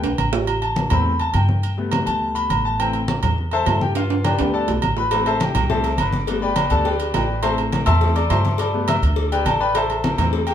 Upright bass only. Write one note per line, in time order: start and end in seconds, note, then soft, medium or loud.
0.03 0.17 B1 medium
0.18 0.86 A1 medium
0.91 1.32 E2 loud
1.34 2.02 G2 medium
2.07 2.48 D2 loud
2.50 3.18 A1 medium
3.23 3.64 E2 loud
3.67 4.34 G2 loud
4.40 4.67 D2 loud
4.69 4.82 B1 medium
4.83 5.50 A1 medium
5.55 5.96 C2 loud
5.99 6.66 G1 medium
6.71 7.11 D2 loud
7.14 7.82 A1 medium
7.87 8.27 E2 loud
8.30 8.97 G2 loud
9.02 9.43 D2 loud
9.45 10.13 A1 medium
10.18 10.54 E2 loud